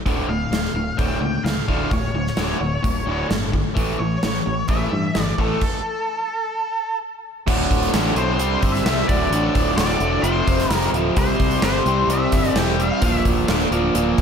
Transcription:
0.06 fingered electric bass D1, distorted electric guitar D2 A2 D3, kick, closed hi-hat
0.28 fingered electric bass D1, distorted electric guitar D2 A2, lead electric guitar F5
0.51 fingered electric bass D1, distorted electric guitar D2 A2, snare, closed hi-hat
0.65 snare
0.74 fingered electric bass D1, distorted electric guitar D2 A2
0.97 fingered electric bass D1, distorted electric guitar D2 A2 D3, lead electric guitar G5, kick, closed hi-hat
1.21 fingered electric bass C#2, distorted electric guitar D2 A2
1.44 fingered electric bass C#2, distorted electric guitar D2 A2, lead electric guitar F5, snare, closed hi-hat
1.68 fingered electric bass D1, distorted electric guitar D2 A2 D3, kick
1.91 fingered electric bass D1, distorted electric guitar D2 A2, lead electric guitar C#5, kick, closed hi-hat
2.14 fingered electric bass D1, distorted electric guitar D2 A2
2.27 snare
2.37 fingered electric bass D1, distorted electric guitar D2 A2 D3, snare, closed hi-hat
2.60 fingered electric bass D1, distorted electric guitar D2 A2
2.82 fingered electric bass D1, distorted electric guitar D2 A2, kick, closed hi-hat
3.06 fingered electric bass D1, distorted electric guitar D2 A2 D3
3.29 fingered electric bass G1, distorted electric guitar D2 A2, snare, closed hi-hat
3.52 distorted electric guitar D2 A2, kick
3.74 fingered electric bass A1, distorted electric guitar A2 E3 A3, kick, closed hi-hat
3.99 fingered electric bass A1, distorted electric guitar A2 E3, lead electric guitar C#5
4.23 fingered electric bass A1, distorted electric guitar A2 E3, snare, closed hi-hat
4.34 snare
4.46 fingered electric bass A1, distorted electric guitar A2 E3
4.68 fingered electric bass A1, distorted electric guitar A2 E3 A3, lead electric guitar E5, kick, closed hi-hat
4.91 fingered electric bass G2, distorted electric guitar A2 E3
5.15 fingered electric bass G1, distorted electric guitar A2 E3, snare, closed hi-hat
5.22 lead electric guitar D5
5.38 fingered electric bass A1, distorted electric guitar A2 E3 A3, lead electric guitar A4, kick
5.61 kick, crash
7.46 fingered electric bass D1, distorted electric guitar D2 A2 D3, string machine D4 F4 A4, kick, crash
7.71 fingered electric bass D1, kick, closed hi-hat
7.83 closed hi-hat
7.93 fingered electric bass A1, distorted electric guitar D2 A2 D3, snare, closed hi-hat
8.15 fingered electric bass B1, distorted electric guitar D2 A2 D3, lead electric guitar C5, closed hi-hat
8.38 fingered electric bass C2, distorted electric guitar C3 G3 C4, string machine C4 E4 G4, closed hi-hat
8.62 fingered electric bass G1, kick, closed hi-hat
8.72 lead electric guitar E5, snare, closed hi-hat
8.84 fingered electric bass C2, distorted electric guitar C3 G3 C4, snare, closed hi-hat
9.08 fingered electric bass D1, distorted electric guitar D2 A2 D3, string machine D4 F4 A4, lead electric guitar D5, kick, closed hi-hat
9.31 fingered electric bass A1, distorted electric guitar D2 A2 D3, closed hi-hat
9.55 fingered electric bass D1, kick, closed hi-hat
9.77 fingered electric bass D1, distorted electric guitar D2 A2 D3, lead electric guitar D5, snare, closed hi-hat
9.90 closed hi-hat
10.00 fingered electric bass E1, distorted electric guitar D2 A2 D3, closed hi-hat
10.22 fingered electric bass F1, distorted electric guitar F2 C3 F3, string machine F4 G4 A4, lead electric guitar C5, closed hi-hat
10.47 fingered electric bass F1, kick, closed hi-hat
10.60 snare, closed hi-hat
10.70 fingered electric bass F1, distorted electric guitar F2 C3 F3, lead electric guitar A#4, snare, closed hi-hat
10.82 closed hi-hat
10.92 fingered electric bass D1, distorted electric guitar F2 C3 F3, closed hi-hat
11.16 fingered electric bass C2, distorted electric guitar C3 G3 C4, string machine E4 G4 C5, lead electric guitar C5, kick, closed hi-hat
11.40 fingered electric bass C2, kick, closed hi-hat
11.51 closed hi-hat
11.62 fingered electric bass G1, distorted electric guitar C3 G3 C4, lead electric guitar C5, snare, closed hi-hat
11.86 fingered electric bass C2, distorted electric guitar C3 G3 C4, closed hi-hat
12.08 fingered electric bass C2, distorted electric guitar C3 G3 C4, closed hi-hat
12.12 lead electric guitar E5
12.32 fingered electric bass G1, kick, snare, closed hi-hat
12.45 closed hi-hat
12.55 fingered electric bass E1, distorted electric guitar C3 G3 C4, lead electric guitar G5, snare, closed hi-hat
12.79 distorted electric guitar C3 G3 C4, lead electric guitar F5, closed hi-hat
13.02 fingered electric bass D1, distorted electric guitar A#2 F3 A#3, string machine D4 A#4 C5, kick, closed hi-hat
13.25 fingered electric bass D1, kick, closed hi-hat
13.48 fingered electric bass D1, distorted electric guitar A#2 F3 A#3, snare, closed hi-hat
13.60 closed hi-hat
13.71 fingered electric bass D1, distorted electric guitar A#2 F3 A#3, closed hi-hat
13.94 fingered electric bass D1, distorted electric guitar A#2 F3 A#3, closed hi-hat
14.18 fingered electric bass D1, kick, closed hi-hat

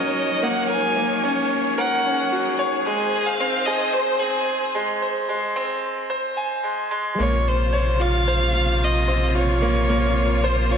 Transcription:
Already playing: string section F#3 D#4 A#4 C#5, grand piano A#3 C#4 F#4 A#4, violin D#5
0.43 grand piano A#3, violin F#5
0.69 string section G#4, grand piano A#4, violin G#5
0.96 grand piano A#3
1.24 grand piano C#4
1.78 grand piano A#4, violin F#5
2.05 grand piano C#4
2.32 grand piano F#4
2.59 grand piano C#5
2.86 string section D#3 C4 C5, grand piano G#3, violin G#4
3.26 violin F5
3.40 grand piano C4
3.66 grand piano G#4, violin D#5
3.93 violin C5, grand piano C5
4.19 grand piano C4, violin G#4
4.75 grand piano G#3
5.02 grand piano C5
5.29 grand piano G#3
5.56 grand piano C4
6.10 grand piano C5
6.37 grand piano G#5
6.63 grand piano G#3
6.91 grand piano G#3
7.18 sub bass A#1, string section C3 C#3 A#3 F4, grand piano A#3, violin C#5
7.48 violin C5
7.73 grand piano C#5
8.00 grand piano F4, violin F5
8.28 grand piano C5
8.54 grand piano F4
8.84 violin D#5
9.08 grand piano C4
9.35 grand piano F4, violin C#5
9.62 grand piano A#3
9.89 grand piano A#3
10.44 grand piano C5, violin C5
10.71 grand piano F4, violin C#5

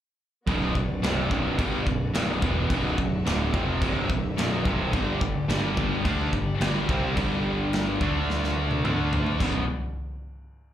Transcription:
0.47 picked electric bass B0, distorted electric guitar B1 F#2 B2, string section D3 B3 F#4 D5, kick, crash
0.75 picked electric bass B0, distorted electric guitar B1 F#2, kick
1.03 picked electric bass C1, distorted electric guitar C2 G2 C3, snare, crash
1.31 picked electric bass B0, distorted electric guitar B1 F#2 B2, kick
1.59 picked electric bass G1, distorted electric guitar G2 D3 G3, kick, crash
1.87 picked electric bass B0, distorted electric guitar B1 F#2, kick
2.14 picked electric bass B0, distorted electric guitar B1 F#2 B2, snare, crash
2.42 picked electric bass E1, distorted electric guitar E2 B2 E3, kick
2.70 picked electric bass B0, distorted electric guitar B1 F#2 B2, string section E5, kick, crash
2.98 picked electric bass B0, distorted electric guitar B1 F#2, kick
3.26 picked electric bass D1, distorted electric guitar D2 A2 D3, snare, crash
3.54 picked electric bass F1, distorted electric guitar F2 C3 F3, kick
3.82 picked electric bass C1, distorted electric guitar C2 G2 C3, kick, crash
4.10 picked electric bass B0, distorted electric guitar B1 F#2, kick
4.37 picked electric bass B0, distorted electric guitar B1 F#2 B2, snare, crash
4.65 picked electric bass C1, distorted electric guitar C2 G2 C3, kick
4.93 picked electric bass G1, distorted electric guitar G2 D3 G3, string section G3 G4 D5, kick, crash
5.21 picked electric bass G1, distorted electric guitar G2 D3, kick
5.48 picked electric bass G1, distorted electric guitar G2 D3 G3, snare, crash
5.77 picked electric bass G1, distorted electric guitar G2 D3 G3, kick
6.05 picked electric bass D2, distorted electric guitar D3 A3 D4, kick, crash
6.33 picked electric bass G1, distorted electric guitar G2 D3, kick
6.61 picked electric bass G1, distorted electric guitar G2 D3 G3, snare, crash
6.88 picked electric bass C2, distorted electric guitar C3 G3 C4, kick
7.16 picked electric bass G1, distorted electric guitar G2 D3 G3, kick, crash
7.73 snare, crash
8.00 picked electric bass D2, distorted electric guitar D3 A3 D4, string section A3 A4 D5, kick
8.30 snare
8.44 snare
8.71 high tom
8.85 picked electric bass D2, distorted electric guitar D3 A3 D4, mid tom
9.13 floor tom
9.26 floor tom
9.40 picked electric bass B0, distorted electric guitar B1 F#2 B2, string section D3 B3 F#4 D5, kick, china

